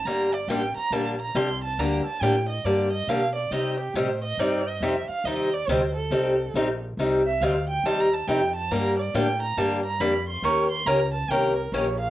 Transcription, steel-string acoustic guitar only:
X:1
M:4/4
L:1/8
Q:"Swing" 1/4=139
K:Gm
V:1 name="Steel-string acoustic guitar"
[D,G,B,DG] z [D,G,B,DG] z [D,G,B,DG] z [D,G,B,DG] z | [D,G,B,DG] z [D,G,B,DG] z [D,G,B,DG] z [D,G,B,DG] z | [C,G,CEG] z [C,G,CEG] z [C,G,CEG] z [C,G,CEG] z | [C,G,CEG] z [C,G,CEG] z [C,G,CEG] z [C,G,CEG] z |
[C,G,CEG] z [C,G,CEG] z [C,G,CEG] z [C,G,CEG] z | [D,G,B,DG] z [D,G,B,DG] z [D,G,B,DG] z [D,G,B,DG] z | [E,B,_DGB] z [E,B,DGB] z [E,B,DGB] z [E,B,DGB] z |]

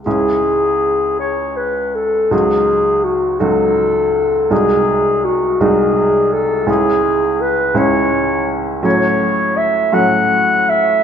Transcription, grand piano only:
X:1
M:6/8
L:1/8
Q:3/8=55
K:C#m
V:1 name="Grand piano"
[C,,G,CE]6 | [C,,F,DF]3 [C,,F,DF]3 | [^B,,,G,DF]3 [B,,,G,DF]3 | [C,,G,CE]3 [C,,G,CE]3 |
[K:F#dor] [A,,F,CF]3 [A,,F,CF]3 |]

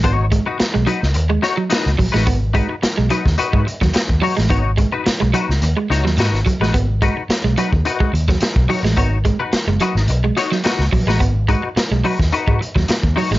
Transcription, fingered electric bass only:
X:1
M:4/4
L:1/16
Q:1/4=108
K:G#m
V:1 name="Fingered electric bass" clef=bass
G,,,3 z2 B,,, z C,, D,,2 z3 C,, A,,, =A,,, | G,,,3 z2 B,,, z D,, z G,, z D,, z D,, z =A,,, | G,,,3 z2 B,,, z C,, D,, z C,, D,, G,, G,,, z =A,,, | G,,,3 z2 B,,, z D,, z2 D,,2 z B,,, z =A,,, |
G,,,3 z2 F,,, z G,,, B,,,2 z3 C,, A,,, =A,,, | G,,,3 z2 B,,, z D,, z G,, z D,, z D,, z =A,,, |]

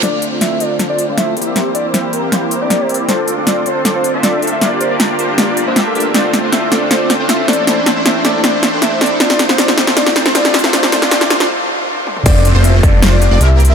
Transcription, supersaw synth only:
X:1
M:4/4
L:1/16
Q:1/4=157
K:F
V:1 name="Supersaw synth"
[A,CDFc]3 [A,CDFc]3 [A,CDFA]2 [A,CDFc]3 [A,CDFd]3 [B,CEGd]2 | [B,CEGc]3 [B,CEGc]3 [B,CEGB]2 [B,CEGc]3 [B,CEGd]3 [B,CEGd]2 | [CDFAd]3 [CDFAd]3 [CDFAc]2 [CDFAd]3 [CDFAe]3 [CDFAe]2 | [B,DFGd]3 [B,DFGd]3 [B,DFGc]2 [B,DFGd]3 [B,DFGe]3 [B,DFGe]2 |
[A,CDFc]3 [A,CDFc]3 [A,CDFA]2 [A,CDFc]3 [A,CDFc]3 [A,CDEA]2 | [A,CDEc]3 [A,CDEc]3 [A,CDEA]2 [A,CDEc]3 [A,CDEc]3 [A,CDEA]2 | [A,CDFc]3 [A,CDFc] [A,CDFc]3 [A,CDFc] [A,CDFc]3 [A,CDFc] [A,CDFc]3 [A,CDFc] | [A,CDFc]2 [A,CDFc]2 [A,CDFc]2 [A,CDFc]2 z8 |
[A,CDFc]3 [A,CDFc]3 [A,CDFA]2 [A,CDFc]3 [A,CDFd] [B,CEGB]4 |]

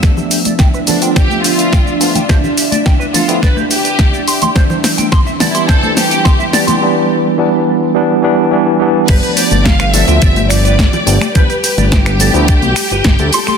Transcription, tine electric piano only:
X:1
M:4/4
L:1/16
Q:1/4=106
K:Gmix
V:1 name="Tine electric piano"
[F,A,B,D]6 [F,A,B,D] [F,A,B,F]6- [F,A,B,F] [F,A,B,D] z | [F,A,B,D] z4 z [F,A,B,D] [F,A,B,E] z8 | [E,G,D]6 [E,G,B,D] [E,G,B,G] [E,G,]6 [E,G,B,D] [E,G,B,G] | [E,G,B,D]4 [E,G,B,D]4 [E,G,B,D]2 [E,G,B,D]2 [E,G,B,D]2 [E,G,B,D]2 |
z6 [F,A,B,D] [F,A,B,F]6- [F,A,B,F] [F,A,B,D] z | [F,A,B,D] z4 z [F,A,B,D] [F,A,B,E] z8 |]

